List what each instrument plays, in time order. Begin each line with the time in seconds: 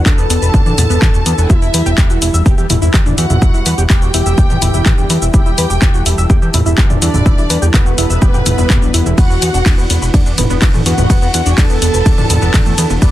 Already playing: analog synth pad E3 B3 D4 F#4
0.06 analog synth bass E1, synth arpeggio sound D4 D5, analog synth lead A4, violin section A5, kick, clap, shaker
0.18 analog synth bass E1, synth arpeggio sound B3 B4, shaker
0.30 analog synth bass E1, synth arpeggio sound B3 B4, open hi-hat, shaker
0.42 analog synth bass E1, synth arpeggio sound B4 B5, shaker
0.54 analog synth bass E1, synth arpeggio sound D4 D5, kick, shaker
0.66 analog synth bass E2, synth arpeggio sound D4 D5, mid tom, shaker
0.78 analog synth bass E1, synth arpeggio sound B3 B4, mid tom, open hi-hat, shaker
0.90 analog synth bass E1, synth arpeggio sound B3 B4, shaker
1.02 analog synth bass E2, synth arpeggio sound D4 D5, kick, clap, mid tom, shaker
1.14 analog synth bass E1, synth arpeggio sound A3 A4, shaker
1.26 analog synth bass E2, synth arpeggio sound B3 B4, open hi-hat, shaker
1.38 analog synth bass E1, synth arpeggio sound B3 B4, shaker
1.50 analog synth bass E1, analog synth pad E3 G3 E4 B4, synth arpeggio sound E4 E5, analog synth lead E4, violin section E5, kick, shaker
1.62 analog synth bass E1, synth arpeggio sound E4 E5, shaker
1.74 analog synth bass E2, synth arpeggio sound B4 B5, open hi-hat, shaker
1.86 analog synth bass E1, synth arpeggio sound G4 G5, shaker
1.98 analog synth bass E1, synth arpeggio sound G4 G5, kick, clap, shaker
2.10 analog synth bass E1, synth arpeggio sound F#4 F#5, shaker
2.22 analog synth bass E1, synth arpeggio sound E4 E5, open hi-hat, shaker
2.34 analog synth bass E1, synth arpeggio sound E5 E6, shaker
2.46 analog synth bass E1, synth arpeggio sound G4 G5, kick, shaker
2.58 analog synth bass E2, synth arpeggio sound G4 G5, shaker
2.70 analog synth bass E1, synth arpeggio sound E4 E5, mid tom, open hi-hat, shaker
2.82 analog synth bass E1, synth arpeggio sound E4 E5, shaker
2.94 analog synth bass E2, synth arpeggio sound G4 G5, kick, clap, shaker
3.06 analog synth bass E2, synth arpeggio sound D4 D5, mid tom, shaker
3.18 analog synth bass E2, synth arpeggio sound E4 E5, analog synth lead F#4, violin section F#5, open hi-hat, shaker
3.30 analog synth bass E1, synth arpeggio sound E4 E5, mid tom, shaker
3.42 analog synth bass E1, synth arpeggio sound E4 E5, kick, shaker
3.54 analog synth bass E1, synth arpeggio sound E4 E5, shaker
3.66 analog synth bass E2, synth arpeggio sound B4 B5, open hi-hat, shaker
3.78 analog synth bass E1, synth arpeggio sound G4 G5, shaker
3.90 analog synth bass E1, synth arpeggio sound G4 G5, violin section G5, kick, clap, shaker
4.02 analog synth bass E1, synth arpeggio sound F#4 F#5, shaker
4.14 analog synth bass E1, synth arpeggio sound E4 E5, open hi-hat, shaker
4.26 analog synth bass E1, synth arpeggio sound E5 E6, shaker
4.38 analog synth bass E1, synth arpeggio sound G4 G5, kick, shaker
4.50 analog synth bass E2, synth arpeggio sound G4 G5, mid tom, shaker
4.62 analog synth bass E1, synth arpeggio sound E4 E5, mid tom, open hi-hat, shaker
4.74 analog synth bass E1, synth arpeggio sound E4 E5, shaker
4.86 analog synth bass E2, synth arpeggio sound G4 G5, kick, clap, mid tom, shaker
4.98 analog synth bass E2, synth arpeggio sound D4 D5, shaker
5.10 analog synth bass E2, synth arpeggio sound E4 E5, open hi-hat, shaker
5.22 analog synth bass E1, synth arpeggio sound E4 E5, shaker
5.34 analog synth bass E1, synth arpeggio sound E4 E5, analog synth lead G4, analog synth pad A4, violin section G5, kick, shaker
5.46 analog synth bass E1, synth arpeggio sound E4 E5, shaker
5.58 analog synth bass E2, synth arpeggio sound B4 B5, open hi-hat, shaker
5.70 analog synth bass E1, synth arpeggio sound G4 G5, shaker
5.82 analog synth bass E1, synth arpeggio sound G4 G5, kick, clap, shaker
5.94 analog synth bass E1, synth arpeggio sound F#4 F#5, shaker
6.06 analog synth bass E1, synth arpeggio sound E4 E5, open hi-hat, shaker
6.18 analog synth bass E1, synth arpeggio sound E5 E6, shaker
6.30 analog synth bass E1, synth arpeggio sound G4 G5, kick, shaker
6.42 analog synth bass E2, synth arpeggio sound G4 G5, shaker
6.54 analog synth bass E1, synth arpeggio sound E4 E5, mid tom, open hi-hat, shaker
6.66 analog synth bass E1, synth arpeggio sound E4 E5, shaker
6.78 analog synth bass E2, synth arpeggio sound G4 G5, kick, clap, shaker
6.90 analog synth bass E2, synth arpeggio sound D4 D5, mid tom, shaker
7.02 analog synth bass E2, analog synth lead D4, synth arpeggio sound E4 E5, violin section D5, open hi-hat, shaker
7.14 analog synth bass E1, synth arpeggio sound E4 E5, mid tom, shaker
7.26 analog synth bass E1, synth arpeggio sound E4 E5, kick, shaker
7.38 analog synth bass E1, synth arpeggio sound E4 E5, shaker
7.50 analog synth bass E2, synth arpeggio sound B4 B5, open hi-hat, shaker
7.62 analog synth bass E1, synth arpeggio sound G4 G5, shaker
7.74 analog synth bass E1, analog synth lead B3, synth arpeggio sound G4 G5, violin section B4, kick, clap, shaker
7.86 analog synth bass E1, synth arpeggio sound F#4 F#5, shaker
7.98 analog synth bass E1, synth arpeggio sound E4 E5, open hi-hat, shaker
8.10 analog synth bass E1, synth arpeggio sound E5 E6, shaker
8.22 analog synth bass E1, synth arpeggio sound G4 G5, kick, shaker
8.34 analog synth bass E1, synth arpeggio sound G4 G5, mid tom, shaker
8.46 analog synth bass E1, synth arpeggio sound E4 E5, mid tom, open hi-hat, shaker
8.58 analog synth bass E1, synth arpeggio sound E4 E5, shaker
8.70 analog synth bass E1, synth arpeggio sound G4 G5, kick, clap, mid tom, shaker
8.82 analog synth bass B1, synth arpeggio sound D4 D5, shaker
8.94 analog synth bass E1, synth arpeggio sound E4 E5, open hi-hat, shaker
9.06 analog synth bass E1, synth arpeggio sound E4 E5, shaker
9.18 analog synth bass E1, synth arpeggio sound B3 B4, analog synth pad B3 D4 F#4, analog synth lead F#4, violin section F#5, kick, ride, shaker
9.30 analog synth bass E1, synth arpeggio sound B3 B4, shaker
9.42 analog synth bass E2, synth arpeggio sound F#4 F#5, open hi-hat, shaker
9.54 analog synth bass E1, synth arpeggio sound D4 D5, shaker
9.66 analog synth bass E1, synth arpeggio sound D4 D5, kick, clap, ride, shaker
9.78 analog synth bass E1, synth arpeggio sound B3 B4, shaker
9.90 analog synth bass E1, synth arpeggio sound B3 B4, open hi-hat, shaker
10.02 analog synth bass E1, synth arpeggio sound B4 B5, shaker
10.14 analog synth bass E1, synth arpeggio sound D4 D5, kick, ride, shaker
10.26 analog synth bass E2, synth arpeggio sound D4 D5, shaker
10.38 analog synth bass E1, synth arpeggio sound B3 B4, mid tom, open hi-hat, shaker
10.50 analog synth bass E1, synth arpeggio sound B3 B4, shaker
10.62 analog synth bass E2, synth arpeggio sound D4 D5, kick, clap, ride, shaker
10.74 analog synth bass E2, synth arpeggio sound A3 A4, mid tom, shaker
10.86 analog synth bass E2, synth arpeggio sound B3 B4, analog synth lead F#4, violin section F#5, open hi-hat, shaker
10.98 analog synth bass E1, synth arpeggio sound B3 B4, mid tom, shaker
11.10 analog synth bass E1, synth arpeggio sound B3 B4, kick, ride, shaker
11.22 analog synth bass E1, synth arpeggio sound B3 B4, shaker
11.34 analog synth bass E2, synth arpeggio sound F#4 F#5, open hi-hat, shaker
11.46 analog synth bass E1, synth arpeggio sound D4 D5, shaker
11.58 analog synth bass E1, synth arpeggio sound D4 D5, analog synth lead A4, violin section A5, kick, clap, ride, shaker
11.70 analog synth bass E1, synth arpeggio sound B3 B4, shaker
11.82 analog synth bass E1, synth arpeggio sound B3 B4, open hi-hat, shaker
11.94 analog synth bass E1, synth arpeggio sound B4 B5, shaker
12.06 analog synth bass E1, synth arpeggio sound D4 D5, kick, ride, shaker
12.18 analog synth bass E2, synth arpeggio sound D4 D5, mid tom, shaker
12.30 analog synth bass E1, synth arpeggio sound B3 B4, mid tom, open hi-hat, shaker
12.42 analog synth bass E1, synth arpeggio sound B3 B4, shaker
12.54 analog synth bass E2, synth arpeggio sound D4 D5, kick, clap, mid tom, ride, shaker
12.66 analog synth bass E2, synth arpeggio sound A3 A4, shaker
12.78 analog synth bass E2, synth arpeggio sound B3 B4, open hi-hat, shaker
12.90 analog synth bass E1, synth arpeggio sound B3 B4, shaker
13.02 analog synth bass E1, synth arpeggio sound B3 B4, analog synth lead D4, violin section D5, kick, ride, shaker